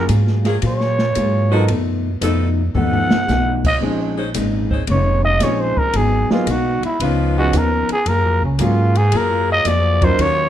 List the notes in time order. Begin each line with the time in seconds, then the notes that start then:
0.08 G#2 F#3 A#3 F4 G#4, hi-hat pedal, ride
0.27 snare
0.44 F#3 A#3 F4 G#4, snare, ride
0.62 A#2 F#3 A#3 F4 G#4, ride
0.67 C#5
0.81 snare
0.99 snare
1.15 G#2 F#3 A#3 F4 G#4, hi-hat pedal, ride
1.50 F3 F#3 B3 D#4 F4 F#4 A4
1.55 A#4
1.68 F#2 B2 F3 A3, ride
1.73 D#4
2.20 F2 B2 F3 B3 D#4 A4, hi-hat pedal, ride
2.25 A3 D#4
2.74 D#2 B2 F3 A3 B3 D#4 A4 F#5, floor tom
2.79 D#4
2.93 floor tom
3.10 muted upright bass stroke, snare
3.27 B1 B2 F3 A3 D#4, snare, hi-hat pedal
3.64 D#5, kick, crash
3.81 A#1 A#2 F3 G#3 C4 C#4 D#4 G#4
4.16 G#3 C#4 D#4 C5
4.34 G#1 A#2 G#3 C#4 D#4, hi-hat pedal, ride
4.70 G#3 C#4 D#4 C5, kick
4.87 F1 A#2 G#3 C#4 C#5, ride
4.92 D#4
5.25 D#5
5.40 A#1 A#2 F3 G#3 C4 C#4 D#4 G#4 C#5, snare, hi-hat pedal, ride
5.60 C5
5.77 A#4, muted upright bass stroke, kick
5.93 G#1 G#2 F#3 B3 G#4, ride
5.98 D#4
6.30 F#3 A#3 B3 D#4 F4 G#4, muted upright bass stroke, snare
6.47 B1 G#2 F#3 B3 D#4 F#4, hi-hat pedal, ride
6.82 E4, muted upright bass stroke, ride
7.00 C#2 C#3 F3 B3 C#4 D#4 F4 B4, ride
7.04 D#4
7.38 F3 B3 C#4 D#4 F#4 G#4
7.53 D#2 C#3 F3 B3 D#4, hi-hat pedal, ride
7.58 A#4
7.89 G#4, muted upright bass stroke, ride
8.06 F#2 F#3 A#3 F4 A#4, ride
8.11 G#4
8.24 F2
8.41 C#2
8.45 C#4
8.59 G#2 F#3 A#3 C#4 F4 G#4, hi-hat pedal, ride
8.63 G#4
8.95 G#4, ride
9.11 F#2 F#3 A#3 F4 G#4, ride
9.15 F4 G#4 A#4
9.52 D#5
9.65 F2 F#3 A#3 F4 G#4 D5, hi-hat pedal, ride
10.02 F#3 C#4 D#4 F4 A#4 C5, kick, ride
10.18 D#2 D#3 F3 F#3 C#4 D#4 F4 F#4 C#5, ride